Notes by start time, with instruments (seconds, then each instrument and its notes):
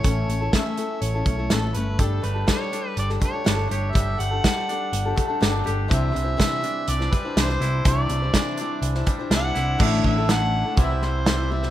Already playing: harmonica C#5
0.03 picked electric bass A1, steel-string acoustic guitar A2 E3 A3 C#4 E4 A4, kick, closed hi-hat
0.28 picked electric bass A1, steel-string acoustic guitar A3 C#4 E4 A4, closed hi-hat
0.41 steel-string acoustic guitar A3 C#4 E4 A4
0.52 steel-string acoustic guitar A2 E3 A3 C#4 E4 A4, harmonica E5, kick, snare, closed hi-hat
0.77 steel-string acoustic guitar A3 C#4 E4 A4, closed hi-hat
1.02 picked electric bass A1, harmonica C#5, closed hi-hat
1.14 steel-string acoustic guitar A3 C#4 E4 A4
1.26 picked electric bass B1, steel-string acoustic guitar A3 C#4 E4 A4, kick, closed hi-hat
1.37 steel-string acoustic guitar A3 C#4 E4 A4
1.50 picked electric bass A1, steel-string acoustic guitar A2 E3 A3 C#4 E4 A4, harmonica A4, snare, closed hi-hat
1.62 steel-string acoustic guitar A3 C#4 E4 A4
1.74 picked electric bass G1, steel-string acoustic guitar A3 C#4 E4 A4, harmonica B4, closed hi-hat
1.99 picked electric bass G1, steel-string acoustic guitar G3 D4 G4 A4, harmonica A4, kick, closed hi-hat
2.22 picked electric bass G1, steel-string acoustic guitar G3 D4 G4 A4, clean electric guitar A3, harmonica B4, closed hi-hat
2.34 steel-string acoustic guitar D4 G4 A4
2.47 steel-string acoustic guitar G3 D4 G4 A4, kick, snare, closed hi-hat
2.52 harmonica C#5
2.72 steel-string acoustic guitar G3 D4 G4 A4, closed hi-hat
2.97 picked electric bass G1, clean electric guitar G3, harmonica D5, closed hi-hat
3.10 steel-string acoustic guitar D4 G4 A4, snare
3.19 steel-string acoustic guitar G3 D4 G4 A4, clean electric guitar A3, kick, closed hi-hat
3.24 harmonica C#5
3.33 steel-string acoustic guitar D4 G4 A4
3.44 picked electric bass G1, steel-string acoustic guitar G3 D4 G4 A4, snare, closed hi-hat
3.56 steel-string acoustic guitar D4 G4 A4
3.67 picked electric bass G1, steel-string acoustic guitar G3 D4 G4 A4, harmonica C#5, closed hi-hat
3.91 picked electric bass G1, steel-string acoustic guitar G3 D4 G4 A4, harmonica E5, kick
3.96 closed hi-hat
4.18 picked electric bass G1, steel-string acoustic guitar G3 D4 G4 A4, clean electric guitar A3, harmonica F#5, closed hi-hat
4.31 steel-string acoustic guitar D4 G4 A4
4.43 steel-string acoustic guitar G3 D4 G4 A4, kick, snare, closed hi-hat
4.69 steel-string acoustic guitar G3 D4 G4 A4, closed hi-hat
4.93 picked electric bass G1, clean electric guitar G3, closed hi-hat
5.05 steel-string acoustic guitar D4 G4 A4
5.16 steel-string acoustic guitar G3 D4 G4 A4, clean electric guitar A3, kick, closed hi-hat
5.28 steel-string acoustic guitar D4 G4 A4
5.40 picked electric bass G1, steel-string acoustic guitar G3 D4 G4 A4, snare, closed hi-hat
5.51 steel-string acoustic guitar D4 G4 A4
5.64 picked electric bass G1, steel-string acoustic guitar G3 D4 G4 A4, closed hi-hat
5.88 picked electric bass C2, steel-string acoustic guitar C3 E3 G3 D4 E4 C5, kick, closed hi-hat
5.94 harmonica E5
6.12 picked electric bass C2, clean electric guitar E3, steel-string acoustic guitar G3 D4 E4 C5
6.16 closed hi-hat
6.24 steel-string acoustic guitar G3 D4 E4 C5
6.37 steel-string acoustic guitar C3 E3 G3 D4 E4 C5, kick, snare, closed hi-hat
6.62 steel-string acoustic guitar G3 D4 E4 C5, closed hi-hat
6.87 picked electric bass C2, clean electric guitar E3, harmonica D5, closed hi-hat
7.00 steel-string acoustic guitar G3 D4 E4 C5, snare
7.12 steel-string acoustic guitar G3 D4 E4 C5, harmonica B4, kick, closed hi-hat
7.25 steel-string acoustic guitar G3 D4 E4 C5
7.37 picked electric bass C2, steel-string acoustic guitar C3 E3 G3 D4 E4 C5, harmonica C5, snare, closed hi-hat
7.50 steel-string acoustic guitar G3 D4 E4 C5, snare
7.60 picked electric bass C2, steel-string acoustic guitar G3 D4 E4 C5, snare, closed hi-hat
7.85 picked electric bass C2, steel-string acoustic guitar C3 E3 G3 D4 E4 C5, harmonica D5, kick, closed hi-hat
8.09 picked electric bass C2, clean electric guitar E3, steel-string acoustic guitar G3 D4 E4 C5, closed hi-hat
8.22 steel-string acoustic guitar G3 D4 E4 C5
8.34 steel-string acoustic guitar C3 E3 G3 D4 E4 C5, kick, snare, closed hi-hat
8.58 steel-string acoustic guitar G3 D4 E4, closed hi-hat
8.62 steel-string acoustic guitar C5
8.81 picked electric bass C2, clean electric guitar E3, closed hi-hat
8.95 steel-string acoustic guitar G3 D4 E4 C5, snare
9.07 steel-string acoustic guitar G3 D4 E4 C5, kick, closed hi-hat
9.19 steel-string acoustic guitar G3 D4 E4 C5
9.30 picked electric bass C2, steel-string acoustic guitar C3 E3 G3 D4 E4 C5, snare, closed hi-hat
9.36 harmonica F#5
9.56 picked electric bass C2, steel-string acoustic guitar G3 D4 E4 C5, snare, closed hi-hat
9.79 picked electric bass A1, steel-string acoustic guitar A2 D3 A3 D4 E4 A4, kick, crash
9.83 harmonica E5
10.04 picked electric bass A1, harmonica E5, kick
10.17 steel-string acoustic guitar A3 D4 E4 A4
10.29 steel-string acoustic guitar A2 D3 A3 D4 E4 A4, harmonica F#5, snare, closed hi-hat
10.65 steel-string acoustic guitar A3 D4 E4 A4
10.77 picked electric bass C2, steel-string acoustic guitar C3 E3 G3 C4 E4 C5, harmonica E5, kick, closed hi-hat
10.90 steel-string acoustic guitar G3 C4 E4 C5
11.02 steel-string acoustic guitar G3 C4 E4 C5, harmonica C5, snare
11.26 steel-string acoustic guitar C3 E3 G3 C4 E4 C5, snare, closed hi-hat
11.36 steel-string acoustic guitar G3 C4 E4 C5
11.50 steel-string acoustic guitar G3 C4 E4 C5, harmonica E5
11.63 steel-string acoustic guitar G3 C4 E4 C5, snare